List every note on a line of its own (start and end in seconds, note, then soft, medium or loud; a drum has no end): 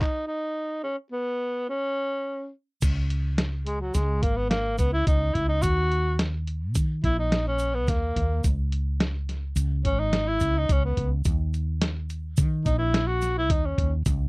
0.00 0.26 D#4 medium
0.00 kick medium
0.00 clap medium
0.27 0.81 D#4 medium
0.83 0.97 C#4 medium
1.12 1.65 B3 medium
1.69 2.50 C#4 medium
2.81 3.91 C#2 loud
2.81 kick medium
2.81 closed hi-hat medium
2.81 crash medium
2.81 shaker medium
3.10 closed hi-hat medium
3.38 snare loud
3.38 closed hi-hat medium
3.65 3.79 G#3 medium
3.65 closed hi-hat medium
3.81 3.96 F#3 medium
3.94 4.21 C#2 medium
3.94 4.24 G#3 medium
3.94 snare soft
3.94 closed hi-hat medium
3.94 shaker soft
4.22 4.75 G#1 medium
4.22 4.38 A#3 medium
4.22 kick medium
4.22 closed hi-hat medium
4.37 4.49 B3 medium
4.49 4.76 A#3 medium
4.49 snare medium
4.49 closed hi-hat medium
4.78 5.05 C#2 medium
4.78 4.92 B3 medium
4.78 kick medium
4.78 closed hi-hat medium
4.78 shaker soft
4.93 5.06 E4 medium
5.07 5.33 C#2 medium
5.07 5.35 D#4 medium
5.07 kick loud
5.07 closed hi-hat medium
5.07 shaker soft
5.33 5.61 C#2 medium
5.33 5.48 E4 medium
5.33 kick medium
5.33 closed hi-hat medium
5.48 5.63 D#4 medium
5.62 6.75 D#2 medium
5.62 6.19 F#4 loud
5.62 kick medium
5.62 closed hi-hat medium
5.62 shaker soft
5.92 closed hi-hat medium
6.19 snare loud
6.19 closed hi-hat medium
6.47 closed hi-hat medium
6.75 7.02 D#3 medium
6.75 kick medium
6.75 closed hi-hat medium
6.75 shaker soft
7.04 7.88 A#1 medium
7.04 7.17 E4 medium
7.04 kick medium
7.04 closed hi-hat soft
7.19 7.44 D#4 medium
7.32 snare medium
7.32 closed hi-hat medium
7.47 7.76 C#4 medium
7.59 closed hi-hat medium
7.59 shaker soft
7.74 7.91 B3 medium
7.87 8.14 D#2 medium
7.87 8.45 A#3 medium
7.87 kick medium
7.87 snare soft
7.87 closed hi-hat medium
7.87 shaker soft
8.16 8.42 D#2 medium
8.16 kick medium
8.16 closed hi-hat medium
8.44 9.52 C#2 medium
8.44 kick medium
8.44 closed hi-hat medium
8.44 shaker soft
8.72 closed hi-hat medium
9.00 snare loud
9.00 closed hi-hat medium
9.29 snare soft
9.29 closed hi-hat medium
9.56 9.82 C#2 loud
9.56 closed hi-hat medium
9.56 shaker medium
9.85 10.37 G#1 medium
9.85 10.01 C#4 medium
9.85 kick medium
9.85 closed hi-hat medium
9.99 10.29 D#4 medium
10.13 snare medium
10.13 closed hi-hat medium
10.28 10.59 E4 medium
10.40 10.67 C#2 medium
10.40 kick medium
10.40 closed hi-hat soft
10.40 shaker soft
10.58 10.74 D#4 medium
10.69 10.95 C#2 medium
10.69 10.84 C#4 medium
10.69 kick loud
10.69 closed hi-hat medium
10.69 shaker soft
10.85 11.10 B3 medium
10.97 11.23 C#2 medium
10.97 kick medium
10.97 closed hi-hat medium
11.25 12.39 D#2 medium
11.25 kick loud
11.25 closed hi-hat medium
11.25 shaker medium
11.54 closed hi-hat soft
11.54 shaker soft
11.82 snare loud
11.82 closed hi-hat medium
12.10 closed hi-hat medium
12.10 shaker soft
12.37 12.64 D#3 medium
12.37 kick medium
12.37 closed hi-hat medium
12.37 shaker medium
12.65 13.50 A#1 medium
12.65 12.78 D#4 medium
12.65 kick medium
12.65 closed hi-hat medium
12.65 shaker soft
12.78 13.09 E4 medium
12.94 snare loud
12.94 closed hi-hat medium
13.07 13.35 F#4 medium
13.21 snare soft
13.21 closed hi-hat medium
13.21 shaker soft
13.38 13.52 E4 medium
13.50 13.76 D#2 medium
13.50 13.67 D#4 medium
13.50 kick loud
13.50 closed hi-hat medium
13.66 13.93 C#4 medium
13.78 14.04 D#2 medium
13.78 kick medium
13.78 closed hi-hat medium
14.06 14.29 C#2 loud
14.06 kick medium
14.06 closed hi-hat medium
14.06 shaker medium